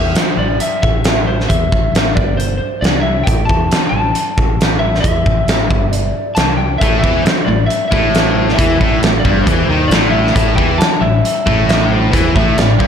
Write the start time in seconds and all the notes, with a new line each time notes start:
Already playing: E2 E5
0.15 C5, muted fingered electric bass stroke, snare, closed hi-hat
0.37 A1 D5
0.60 E5, closed hi-hat
0.82 A1 E5, kick
1.04 snare, closed hi-hat
1.27 C5
1.40 snare
1.49 E2 E5, kick, closed hi-hat
1.72 A1, kick
1.92 A1, closed hi-hat
1.96 snare
2.15 G1 D5, kick
2.37 C5, closed hi-hat
2.57 C5, muted fingered electric bass stroke
2.81 C2 D5, closed hi-hat
2.85 snare
3.01 E5
3.23 A1 G5, kick, closed hi-hat
3.45 E2 A5
3.49 kick
3.70 muted fingered electric bass stroke, snare, closed hi-hat
3.89 A1 A5
4.15 closed hi-hat
4.37 A1, kick
4.61 snare, closed hi-hat
4.79 E5
4.95 snare
5.00 E2 E5, kick
5.05 closed hi-hat
5.26 A1, kick
5.46 A1, snare, closed hi-hat
5.71 G1, kick
5.93 D5, closed hi-hat
6.14 muted fingered electric bass stroke
6.35 C2 A5, snare, closed hi-hat
6.57 G5
6.78 A1 A2 E5, kick, closed hi-hat
6.99 E3 E5
7.04 E2, kick
7.22 C5, muted fingered electric bass stroke, muted overdriven electric guitar stroke, muted distorted electric guitar stroke, closed hi-hat
7.27 snare
7.45 A1 A2 D5
7.66 E5
7.70 closed hi-hat
7.88 A2 E5
7.92 A1, kick
8.15 snare, closed hi-hat
8.31 C5
8.49 D5, snare
8.53 E3 E5
8.58 E2, kick, closed hi-hat
8.80 A1 A2, kick
9.02 A1 A2, snare, closed hi-hat
9.20 D5
9.25 G1 G2, kick
9.43 E2 E3 C5, kick, closed hi-hat
9.65 D#2 C5
9.70 D#3
9.88 A1 D5, closed hi-hat
9.92 A2, snare
10.10 E5
10.27 snare
10.35 A1 A2, kick, closed hi-hat
10.56 E2 E3 G5, kick
10.78 A5, muted overdriven electric guitar stroke, muted fingered electric bass stroke, muted distorted electric guitar stroke, snare, closed hi-hat
11.01 A1 A2 E5
11.25 closed hi-hat
11.46 A1 A2, kick
11.69 E5, snare, closed hi-hat
11.92 C5
12.12 E2 E3, kick, closed hi-hat
12.35 A1 A2 E5, kick
12.58 A1 A2 D5, snare, closed hi-hat
12.80 G1 G2, kick